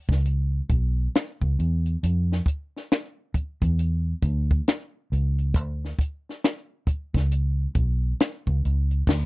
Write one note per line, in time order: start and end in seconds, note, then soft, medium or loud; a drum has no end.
0.09 0.60 C#2 medium
0.09 kick loud
0.09 snare soft
0.25 closed hi-hat medium
0.69 1.07 B1 medium
0.69 kick medium
0.69 closed hi-hat medium
1.15 finger snap medium
1.15 snare loud
1.15 closed hi-hat medium
1.42 1.55 C#2 medium
1.42 kick medium
1.59 1.95 E2 medium
1.59 closed hi-hat medium
1.86 closed hi-hat soft
2.03 2.39 F2 medium
2.03 closed hi-hat medium
2.32 snare soft
2.46 kick medium
2.46 closed hi-hat medium
2.76 snare soft
2.92 finger snap medium
2.92 snare loud
2.92 closed hi-hat medium
3.34 muted fingered electric bass stroke soft
3.34 kick medium
3.34 closed hi-hat medium
3.62 4.13 E2 medium
3.62 kick medium
3.62 closed hi-hat soft
3.79 closed hi-hat medium
4.22 4.60 D2 medium
4.22 kick medium
4.22 closed hi-hat medium
4.51 kick medium
4.68 finger snap medium
4.68 snare loud
4.68 closed hi-hat medium
5.12 5.56 C#2 medium
5.12 closed hi-hat medium
5.39 closed hi-hat soft
5.54 5.92 D2 medium
5.54 kick loud
5.54 closed hi-hat medium
5.85 snare soft
5.99 kick medium
5.99 closed hi-hat medium
6.29 snare soft
6.44 finger snap medium
6.44 snare medium
6.44 closed hi-hat medium
6.87 muted fingered electric bass stroke soft
6.87 kick medium
6.87 closed hi-hat medium
7.14 7.65 C#2 medium
7.14 kick medium
7.14 snare soft
7.14 closed hi-hat soft
7.31 closed hi-hat medium
7.75 8.12 B1 medium
7.75 kick medium
7.75 closed hi-hat medium
8.20 finger snap medium
8.20 snare loud
8.20 closed hi-hat medium
8.47 8.61 C#2 medium
8.47 kick medium
8.65 9.01 C#2 medium
8.65 closed hi-hat medium
8.91 closed hi-hat soft
9.07 9.26 D2 medium
9.07 kick loud
9.07 snare loud
9.07 crash medium